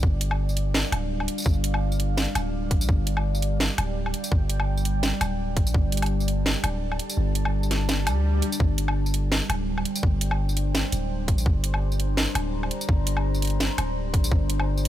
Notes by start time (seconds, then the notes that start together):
Already playing: G3 D4 D5
0.03 G1 F5, kick
0.21 closed hi-hat
0.31 low woodblock
0.49 tambourine
0.57 closed hi-hat
0.74 snare
0.92 D1, closed hi-hat, low woodblock
1.20 low woodblock
1.28 closed hi-hat
1.38 tambourine
1.40 tambourine
1.42 tambourine
1.44 G1, kick, tambourine
1.46 tambourine
1.48 tambourine
1.51 tambourine
1.54 tambourine
1.64 closed hi-hat
1.74 low woodblock
1.92 tambourine
2.00 closed hi-hat
2.17 snare, closed hi-hat, tambourine
2.20 closed hi-hat
2.23 closed hi-hat
2.25 closed hi-hat
2.35 D1, closed hi-hat, tambourine, low woodblock
2.71 A#1, kick, closed hi-hat
2.81 tambourine
2.89 G1 G5, kick
3.07 closed hi-hat
3.17 low woodblock
3.35 tambourine
3.42 closed hi-hat
3.60 snare
3.78 D1, closed hi-hat, low woodblock
4.06 low woodblock
4.14 closed hi-hat
4.24 tambourine
4.32 G1, kick
4.50 closed hi-hat
4.60 low woodblock
4.77 tambourine
4.85 closed hi-hat
5.03 snare, tambourine
5.21 D1, closed hi-hat, tambourine, low woodblock
5.57 A#1, kick, closed hi-hat
5.67 tambourine
5.74 G1 A5, kick
5.92 closed hi-hat
5.97 closed hi-hat
6.02 closed hi-hat, low woodblock
6.06 closed hi-hat
6.20 tambourine
6.28 closed hi-hat
6.46 snare
6.64 D1, closed hi-hat, low woodblock
6.92 low woodblock
6.99 closed hi-hat
7.10 tambourine
7.17 G1
7.35 closed hi-hat
7.45 low woodblock
7.63 tambourine
7.71 snare, closed hi-hat
7.89 snare, closed hi-hat, tambourine, swell
8.07 D2, closed hi-hat, tambourine, low woodblock
8.42 closed hi-hat
8.52 tambourine
8.60 G1 C5 G5, kick
8.78 closed hi-hat
8.88 low woodblock
9.06 tambourine
9.14 closed hi-hat
9.32 snare
9.49 D1, closed hi-hat, low woodblock
9.78 low woodblock
9.85 closed hi-hat
9.95 tambourine
10.03 G1, kick
10.21 closed hi-hat
10.31 low woodblock
10.49 tambourine
10.57 closed hi-hat
10.75 snare, tambourine
10.92 D1, closed hi-hat, tambourine
11.28 A#1, kick, closed hi-hat
11.38 tambourine
11.46 G1 A#5, kick
11.64 closed hi-hat
11.74 low woodblock
11.92 tambourine
12.00 closed hi-hat
12.17 snare
12.35 D1, closed hi-hat, low woodblock
12.63 low woodblock
12.71 closed hi-hat
12.81 tambourine
12.89 G1, kick
13.07 closed hi-hat
13.17 low woodblock
13.35 tambourine
13.42 closed hi-hat
13.45 closed hi-hat
13.47 closed hi-hat
13.50 closed hi-hat
13.60 snare, closed hi-hat, tambourine
13.78 D1, closed hi-hat, low woodblock
14.14 A#1, kick, closed hi-hat
14.24 tambourine
14.32 G1, kick
14.50 closed hi-hat
14.60 low woodblock
14.77 tambourine